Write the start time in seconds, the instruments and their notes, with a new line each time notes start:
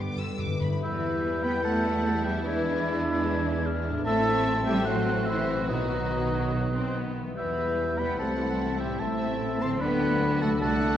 Already playing: double bass section G2, harp G2 D4 G4 B4, cello section G3, viola section B3, violin section G4
0.00 timpani G2, harp D3, violin section D6
0.08 timpani G2
0.16 timpani G2, violin section E6
0.21 timpani G2, harp D4
0.32 timpani G2
0.39 timpani G2, harp B4, violin section D6
0.47 timpani G2
0.54 timpani G2
0.61 harp E2 G4, timpani G2, violin section B5
0.68 timpani G2, harp E4
0.73 harp G4
0.77 harp B4
0.81 double bass section E2, cello section E3, french horn section G3 E4, viola section G3 B3, bassoon B3, violin section E4 B4, clarinet E4, oboe E5, flute G6
1.43 cello section B3, clarinet B4, violin section G5, oboe B5
1.63 cello section A3, clarinet A4, violin section F#5, oboe A5
2.24 harp E2, cello section G3, clarinet G4, violin section E5, oboe G5
2.32 harp D4
2.36 harp G#4
2.41 french horn section G#3 D4, bassoon D4, viola section D4, clarinet E4, harp B4
2.45 cello section E3, viola section G#3, violin section B4, oboe E5, flute G#6
3.66 flute F6
3.88 harp A2
3.92 harp C4
3.97 harp E4
4.01 harp C5, oboe A5, flute E6
4.05 double bass section A1, french horn section E3 C4, cello section A3, viola section A3 C4, bassoon C4, violin section E4 E5, clarinet A4
4.65 harp A2, cello section G3, clarinet G4, violin section E5, oboe G5
4.73 harp A3
4.77 harp F#4
4.82 harp C5, oboe F#5, flute F#6
4.86 cello section F#3, french horn section F#3 C4, bassoon C4, violin section F#4 C5, clarinet F#4
5.26 cello section E3, clarinet E4, violin section C5, oboe E5
5.52 harp B2
5.57 harp F#3
5.61 harp F#4
5.66 harp B4, violin section B4, oboe D#5, flute F#6
5.70 double bass section B1, cello section D#3, french horn section F#3 B3, viola section F#3 B3, bassoon B3, clarinet D#4
6.13 viola section F#3
6.76 viola section C4
6.97 viola section B3
7.19 harp E3
7.24 harp G3
7.28 harp E4
7.33 bassoon B3, harp B4, violin section B4, flute G6
7.37 double bass section E2, cello section E3, viola section G3, french horn section G3 B3, violin section E4, clarinet E4, oboe E5
7.99 harp C3, cello section B3, clarinet B4, violin section G5, oboe B5
8.06 harp G3
8.10 harp E4
8.15 french horn section E3, harp C5
8.19 double bass section C2, cello section A3, bassoon C4, french horn section C4, viola section C4, clarinet A4, violin section F#5, oboe A5, flute E6
8.79 cello section G3, clarinet G4, violin section E5, oboe G5
8.83 harp A2
8.87 harp A3
8.92 harp E4
8.97 cello section A3, harp C5, oboe A5
9.01 double bass section A1, viola section A3, bassoon C4, clarinet A4, violin section E5, flute E6
9.61 harp D3, cello section C4, clarinet C5, violin section A5, oboe C6
9.68 harp F#3
9.73 harp D4
9.77 french horn section F#3 D4, cello section B3, bassoon D4, violin section F#4, harp D5, flute F#6
9.81 double bass section D2, viola section D4, clarinet B4, violin section G5, oboe B5
10.41 harp C3, cello section A3, clarinet A4, violin section F#5, oboe A5
10.48 harp F#3
10.52 harp D4
10.57 double bass section C2, cello section A3, bassoon D4, harp D5
10.61 clarinet A4, violin section F#5, oboe A5, flute F#6